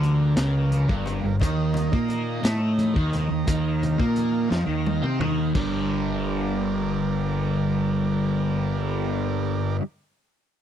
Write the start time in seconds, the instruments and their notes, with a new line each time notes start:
Already playing: fingered electric bass D2, distorted electric guitar D3, transistor combo organ G3 A#3 F4 A#4 D5
0.03 closed hi-hat, high conga
0.36 fingered electric bass C#2, distorted electric guitar C#3, snare, closed hi-hat, low conga
0.55 low conga
0.71 closed hi-hat, high conga
0.88 fingered electric bass G1, distorted electric guitar G2, kick, low conga
1.06 closed hi-hat, low conga
1.23 fingered electric bass G1, distorted electric guitar G2
1.40 fingered electric bass D#2, distorted electric guitar D#3, transistor combo organ D#3 D#4 D#5 A#5, kick, closed hi-hat, high conga
1.74 closed hi-hat, low conga
1.92 fingered electric bass A#2, distorted electric guitar A#3, kick
2.08 closed hi-hat, high conga
2.43 fingered electric bass A2, distorted electric guitar A3, snare, closed hi-hat, low conga
2.60 low conga
2.78 closed hi-hat, high conga
2.94 fingered electric bass D#2, distorted electric guitar D#3, kick
3.13 closed hi-hat, low conga
3.29 fingered electric bass D#2, distorted electric guitar D#3
3.47 fingered electric bass D#2, distorted electric guitar D#3, transistor combo organ F5, kick, closed hi-hat, high conga
3.83 closed hi-hat, low conga
3.98 fingered electric bass A#2, distorted electric guitar A#3, kick
4.16 closed hi-hat, high conga
4.50 fingered electric bass F2, distorted electric guitar F3, snare, low conga
4.67 fingered electric bass D#2, distorted electric guitar D#3
4.86 high tom, high conga
5.02 fingered electric bass C3, distorted electric guitar C4, mid tom
5.19 fingered electric bass D#2, distorted electric guitar D#3, mid tom, low conga
5.53 fingered electric bass G1, distorted electric guitar G2 D3 G3, transistor combo organ A#3 D4 G4 A#4 D5, kick, crash, high conga